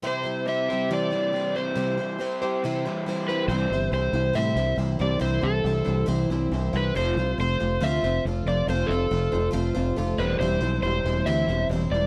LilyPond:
<<
  \new Staff \with { instrumentName = "Electric slide guitar" } { \time 4/4 \key c \major \tempo 4 = 139 c''4 e''4 d''4. c''8~ | c''2~ c''8 r4 b'8 | c''4 c''4 e''4 r8 d''8 | c''8 a'4. r4. b'8 |
c''4 c''4 e''4 r8 d''8 | c''8 a'4. r4. b'8 | c''4 c''4 e''4 r8 d''8 | }
  \new Staff \with { instrumentName = "Twelve-string acoustic guitar" } { \time 4/4 \key c \major <c e g c' e' c''>8 <g c' e' c''>8 <g c' e' c''>8 <g c' e' c''>8 <c e g c' e' c''>8 <g c' e' c''>8 <g c' e' c''>8 <g c' e' c''>8 | <c e g c' e' c''>8 <g c' e' c''>8 <g c' e' c''>8 <g c' e' c''>8 <c e g c' e' c''>8 <g c' e' c''>8 <g c' e' c''>8 <g c' e' c''>8 | <c e g c' e' c''>8 <g c' e' c''>8 <g c' e' c''>8 <g c' e' c''>8 <c e g c' e' c''>8 <g c' e' c''>8 <g c' e' c''>8 <g c' e' c''>8 | <c e g c' e' c''>8 <g c' e' c''>8 <g c' e' c''>8 <g c' e' c''>8 <c e g c' e' c''>8 <g c' e' c''>8 <g c' e' c''>8 <g c' e' c''>8 |
<f a c' f' c''>8 <c' f' c''>8 <a c' f' c''>8 <c' f' c''>8 <f a c' f' c''>8 <c' f' c''>8 <a c' f' c''>8 <c' f' c''>8 | <f a c' f' c''>8 <c' f' c''>8 <a c' f' c''>8 <c' f' c''>8 <f a c' f' c''>8 <c' f' c''>8 <a c' f' c''>8 <c' e' c''>8 | <e g c' e' c''>8 <c' e' c''>8 <g c' e' c''>8 <c' e' c''>8 <e g c' e' c''>8 <c' e' c''>8 <g c' e' c''>8 <c' e' c''>8 | }
  \new Staff \with { instrumentName = "Overdriven electric guitar" } { \clef bass \time 4/4 \key c \major c4 c'8 g'8 c'8 e8 c'8 g8 | c4 c'8 g'8 c'8 e8 c'8 g8 | <c e g>8 <c e>8 <c e>8 <c e>8 <c e>8 <c e>8 <c e>8 <c e>8 | <c e>8 <c e>8 <c e>8 <c e>8 <c e>8 <c e>8 <c e>8 <c e>8 |
<f, c f>8 <f, c>8 <f, c>8 <f, c>8 <f, c>8 <f, c>8 <f, c>8 <f, c>8 | <f, c>8 <f, c>8 <f, c>8 <f, c>8 <f, c>8 <f, c>8 <f, c>8 <e g c'>8 | <e g>8 <e g>8 <e g>8 <e g>8 <e g>8 <e g>8 <e g>8 <e g>8 | }
  \new Staff \with { instrumentName = "Fingered electric bass" } { \clef bass \time 4/4 \key c \major r1 | r1 | c,8 g,,8 c,8 c,8 a,8 c,8 c,8 c,8 | c,8 c,8 c,8 c,8 c,8 c,8 c,8 c,8 |
f,,8 c,8 f,,8 f,,8 d,8 f,,8 f,,8 f,,8 | f,,8 f,,8 f,,8 f,,8 f,,8 f,,8 f,,8 e,,8 | e,,8 b,,8 e,,8 e,,8 d,8 e,,8 e,,8 e,,8 | }
>>